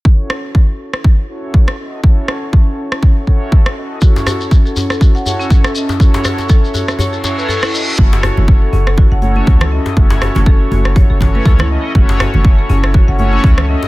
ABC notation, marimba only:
X:1
M:4/4
L:1/16
Q:"Swing 16ths" 1/4=121
K:F#dor
V:1 name="Marimba"
z16 | z16 | F z F z2 A C A F f f C z A C z | F z F z A z F z c A z B A E z2 |
F z F z2 A C A F f f C z A C z | F z F z A z F z c A z B A E z2 | F z F z2 A C A F f f C z A C z |]